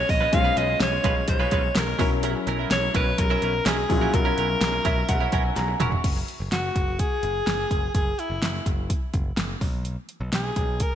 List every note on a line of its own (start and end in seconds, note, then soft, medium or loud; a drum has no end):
0.00 0.29 G#3 medium
0.00 0.29 C#4 medium
0.00 0.29 F4 medium
0.00 0.30 B4 medium
0.00 0.11 C#5 loud
0.09 0.26 A#1 medium
0.09 0.35 D#5 loud
0.09 muted clean electric guitar stroke soft
0.09 kick loud
0.09 open hi-hat medium
0.21 0.32 G#3 soft
0.21 0.32 C#4 medium
0.21 0.33 F4 medium
0.21 0.33 B4 medium
0.32 0.50 B1 loud
0.32 1.96 G#3 medium
0.32 1.96 C#4 medium
0.32 1.96 F4 medium
0.32 0.39 C5 medium
0.32 0.59 F5 loud
0.32 kick loud
0.32 closed hi-hat medium
0.32 cowbell medium
0.40 2.00 C#5 medium
0.44 0.55 G#3 medium
0.44 0.56 C#4 medium
0.44 0.56 F4 medium
0.44 0.57 B4 medium
0.56 0.74 B1 medium
0.56 0.69 G#3 medium
0.56 0.69 C#4 medium
0.56 0.68 F4 medium
0.56 0.67 B4 medium
0.56 0.81 D#5 loud
0.56 closed hi-hat medium
0.69 muted clean electric guitar stroke soft
0.80 0.98 B1 loud
0.80 1.26 C#5 loud
0.80 snare loud
0.80 closed hi-hat medium
0.80 tambourine medium
0.80 cowbell medium
0.92 muted clean electric guitar stroke soft
1.04 1.21 B1 loud
1.04 1.20 G#3 medium
1.04 1.16 C#4 medium
1.04 1.16 F4 medium
1.04 1.15 B4 medium
1.04 kick medium
1.04 closed hi-hat medium
1.16 muted clean electric guitar stroke soft
1.28 1.45 B1 loud
1.28 1.79 C#5 medium
1.28 muted clean electric guitar stroke soft
1.28 kick loud
1.28 closed hi-hat loud
1.28 cowbell medium
1.40 1.50 G#3 medium
1.40 1.51 C#4 medium
1.40 1.52 F4 medium
1.40 1.52 B4 medium
1.51 1.69 B1 loud
1.51 1.67 G#3 medium
1.51 1.63 C#4 medium
1.51 1.63 F4 medium
1.51 1.62 B4 medium
1.51 kick medium
1.51 closed hi-hat medium
1.64 muted clean electric guitar stroke soft
1.75 1.93 B1 loud
1.75 2.12 A#4 medium
1.75 snare loud
1.75 closed hi-hat medium
1.75 tambourine medium
1.75 cowbell medium
1.87 muted clean electric guitar stroke medium
1.98 2.34 B1 loud
1.98 3.86 F#3 medium
1.98 2.15 F#3 medium
1.98 3.86 C#4 medium
1.98 2.11 C#4 medium
1.98 3.86 E4 medium
1.98 2.11 E4 medium
1.98 2.10 A#4 medium
1.98 3.87 A#4 medium
1.98 kick loud
1.98 open hi-hat medium
2.11 muted clean electric guitar stroke soft
2.23 2.39 F#3 medium
2.23 2.35 C#4 medium
2.23 2.35 E4 loud
2.23 2.34 A#4 loud
2.23 closed hi-hat medium
2.23 cowbell medium
2.35 muted clean electric guitar stroke soft
2.47 2.64 B1 medium
2.47 2.59 F#3 medium
2.47 2.59 C#4 medium
2.47 2.58 E4 medium
2.47 2.58 A#4 medium
2.47 closed hi-hat medium
2.59 2.72 F#3 medium
2.59 2.72 C#4 medium
2.59 2.71 E4 medium
2.59 2.71 A#4 medium
2.71 2.88 B1 loud
2.71 2.94 C#5 loud
2.71 snare loud
2.71 closed hi-hat medium
2.71 tambourine medium
2.71 cowbell medium
2.83 muted clean electric guitar stroke soft
2.94 3.12 B1 loud
2.94 3.10 F#3 medium
2.94 3.07 C#4 medium
2.94 3.06 E4 loud
2.94 3.05 A#4 medium
2.94 3.20 B4 medium
2.94 kick medium
2.94 closed hi-hat medium
3.07 muted clean electric guitar stroke medium
3.18 3.36 B1 loud
3.18 3.69 A#4 loud
3.18 muted clean electric guitar stroke medium
3.18 kick medium
3.18 closed hi-hat loud
3.18 cowbell medium
3.30 3.41 F#3 medium
3.30 3.42 C#4 medium
3.30 3.42 E4 medium
3.30 3.43 A#4 medium
3.42 3.59 B1 loud
3.42 3.54 F#3 medium
3.42 3.54 C#4 medium
3.42 3.54 E4 medium
3.42 3.53 A#4 medium
3.42 closed hi-hat medium
3.54 muted clean electric guitar stroke soft
3.66 3.83 B1 loud
3.66 3.82 F#3 medium
3.66 3.78 C#4 loud
3.66 3.77 E4 loud
3.66 4.16 G#4 loud
3.66 3.77 A#4 loud
3.66 snare loud
3.66 closed hi-hat medium
3.66 tambourine medium
3.66 cowbell medium
3.78 muted clean electric guitar stroke soft
3.89 4.07 A#1 loud
3.89 5.76 F#3 medium
3.89 5.77 C#4 medium
3.89 5.77 E4 medium
3.89 3.96 F4 medium
3.89 muted clean electric guitar stroke soft
3.89 kick medium
3.89 open hi-hat medium
3.97 5.80 F#4 medium
4.01 4.12 F#3 medium
4.01 4.13 C#4 medium
4.01 4.13 E4 medium
4.01 4.13 A#4 medium
4.13 4.31 B1 loud
4.13 5.81 A#4 loud
4.13 muted clean electric guitar stroke soft
4.13 kick loud
4.13 closed hi-hat medium
4.13 cowbell medium
4.25 4.36 F#3 medium
4.25 4.37 C#4 medium
4.25 4.37 E4 medium
4.25 4.38 A#4 medium
4.37 4.55 B1 loud
4.37 4.50 F#3 medium
4.37 4.49 C#4 medium
4.37 4.49 E4 medium
4.37 4.48 A#4 medium
4.37 closed hi-hat medium
4.49 muted clean electric guitar stroke soft
4.61 4.78 B1 loud
4.61 snare loud
4.61 closed hi-hat medium
4.61 tambourine medium
4.61 cowbell medium
4.73 muted clean electric guitar stroke soft
4.85 5.02 B1 loud
4.85 5.01 F#3 medium
4.85 4.97 C#4 medium
4.85 4.96 E4 loud
4.85 4.96 A#4 medium
4.85 5.07 E5 medium
4.85 kick medium
4.85 closed hi-hat medium
4.97 muted clean electric guitar stroke soft
5.09 5.26 B1 loud
5.09 5.31 F#5 medium
5.09 muted clean electric guitar stroke soft
5.09 kick loud
5.09 closed hi-hat loud
5.09 cowbell medium
5.20 5.31 F#3 medium
5.20 5.32 C#4 medium
5.20 5.32 E4 medium
5.20 5.33 A#4 medium
5.32 5.50 B1 medium
5.32 5.48 F#3 medium
5.32 5.44 C#4 medium
5.32 5.44 E4 loud
5.32 5.43 A#4 medium
5.32 5.55 G#5 medium
5.32 kick medium
5.32 closed hi-hat medium
5.44 muted clean electric guitar stroke soft
5.56 5.74 B1 loud
5.56 5.79 A#5 medium
5.56 snare medium
5.56 closed hi-hat medium
5.56 cowbell medium
5.68 muted clean electric guitar stroke soft
5.80 5.98 E1 medium
5.80 5.96 F#3 medium
5.80 5.92 C#4 loud
5.80 5.91 E4 loud
5.80 5.91 A#4 loud
5.80 6.02 C#6 medium
5.80 closed hi-hat medium
5.80 mid tom loud
5.92 muted clean electric guitar stroke soft
5.92 floor tom medium
6.04 6.21 F#1 medium
6.04 kick loud
6.04 closed hi-hat medium
6.04 crash medium
6.28 closed hi-hat medium
6.40 6.49 F#1 medium
6.52 6.69 F#1 medium
6.52 7.01 F#4 medium
6.52 snare medium
6.52 closed hi-hat medium
6.76 7.01 F#1 medium
6.76 kick medium
6.76 closed hi-hat medium
6.99 7.94 G#4 loud
6.99 kick medium
6.99 closed hi-hat loud
7.23 7.40 F#1 loud
7.23 closed hi-hat medium
7.47 7.64 F#1 loud
7.47 snare loud
7.47 closed hi-hat medium
7.71 7.88 F#1 medium
7.71 kick medium
7.71 closed hi-hat medium
7.95 8.12 F#1 medium
7.95 8.21 G#4 medium
7.95 kick loud
7.95 closed hi-hat medium
8.19 8.66 E4 medium
8.19 closed hi-hat medium
8.30 8.39 F#1 medium
8.42 8.59 F#1 medium
8.42 snare loud
8.42 closed hi-hat medium
8.66 8.92 F#1 loud
8.66 kick medium
8.66 closed hi-hat medium
8.90 kick medium
8.90 closed hi-hat loud
9.14 9.31 F#1 loud
9.14 kick medium
9.14 closed hi-hat medium
9.37 9.54 F#1 loud
9.37 snare loud
9.37 closed hi-hat medium
9.61 9.96 B1 medium
9.61 kick loud
9.61 open hi-hat medium
9.85 closed hi-hat medium
10.09 closed hi-hat medium
10.21 10.29 B1 medium
10.32 10.50 B1 medium
10.32 10.84 G#4 medium
10.32 snare loud
10.32 closed hi-hat medium
10.56 10.82 B1 medium
10.56 kick medium
10.56 closed hi-hat medium
10.80 10.95 A#4 medium
10.80 kick medium
10.80 closed hi-hat loud